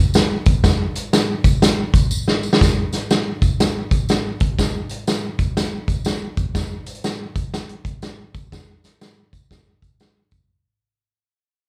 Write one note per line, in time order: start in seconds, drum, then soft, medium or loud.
0.14 snare loud
0.14 closed hi-hat medium
0.14 tambourine loud
0.46 kick loud
0.46 closed hi-hat medium
0.46 tambourine medium
0.64 kick loud
0.64 snare loud
0.64 closed hi-hat medium
0.64 tambourine medium
0.95 closed hi-hat medium
0.95 tambourine medium
1.13 snare loud
1.13 closed hi-hat medium
1.13 tambourine loud
1.44 kick medium
1.44 closed hi-hat medium
1.44 tambourine medium
1.62 snare loud
1.62 closed hi-hat loud
1.62 tambourine loud
1.94 kick medium
1.94 closed hi-hat medium
1.94 tambourine medium
2.11 tambourine loud
2.28 snare medium
2.43 tambourine medium
2.53 snare loud
2.61 kick medium
2.61 snare medium
2.61 closed hi-hat medium
2.61 tambourine medium
2.93 snare soft
2.93 closed hi-hat medium
2.93 tambourine medium
3.11 snare loud
3.11 closed hi-hat medium
3.11 tambourine medium
3.42 kick medium
3.42 closed hi-hat medium
3.42 tambourine medium
3.60 snare loud
3.60 closed hi-hat loud
3.60 tambourine loud
3.91 kick medium
3.91 closed hi-hat medium
3.91 tambourine medium
4.09 snare loud
4.09 closed hi-hat medium
4.09 tambourine medium
4.40 kick loud
4.40 closed hi-hat medium
4.40 tambourine medium
4.59 kick medium
4.59 snare medium
4.59 closed hi-hat medium
4.59 tambourine medium
4.89 closed hi-hat medium
4.89 tambourine medium
5.07 snare loud
5.07 closed hi-hat medium
5.07 tambourine medium
5.39 kick medium
5.39 closed hi-hat medium
5.39 tambourine medium
5.57 snare loud
5.57 closed hi-hat loud
5.57 tambourine loud
5.88 kick medium
5.88 closed hi-hat medium
5.88 tambourine medium
6.05 snare loud
6.05 closed hi-hat medium
6.05 tambourine loud
6.37 kick loud
6.37 closed hi-hat medium
6.37 tambourine medium
6.55 kick loud
6.55 snare medium
6.55 closed hi-hat medium
6.55 tambourine loud
6.86 closed hi-hat medium
6.86 tambourine medium
6.95 closed hi-hat medium
7.04 snare loud
7.04 closed hi-hat medium
7.04 tambourine loud
7.36 kick medium
7.36 closed hi-hat medium
7.36 tambourine medium
7.54 snare loud
7.54 closed hi-hat loud
7.54 tambourine loud
7.69 closed hi-hat soft
7.85 kick medium
7.85 closed hi-hat medium
7.85 tambourine medium
8.02 snare loud
8.02 closed hi-hat medium
8.02 tambourine loud
8.34 kick medium
8.34 closed hi-hat medium
8.34 tambourine medium
8.52 kick medium
8.52 snare loud
8.52 closed hi-hat medium
8.52 tambourine medium
8.84 snare soft
8.84 closed hi-hat medium
8.84 tambourine medium
9.01 snare loud
9.01 closed hi-hat medium
9.01 tambourine medium
9.33 kick medium
9.33 closed hi-hat medium
9.33 tambourine medium
9.51 kick medium
9.51 snare medium
9.51 closed hi-hat loud
9.51 tambourine medium
9.82 kick medium
9.82 closed hi-hat medium
9.82 tambourine medium
10.00 snare loud
10.00 closed hi-hat medium
10.00 tambourine medium
10.31 kick medium
10.31 closed hi-hat medium
10.31 tambourine medium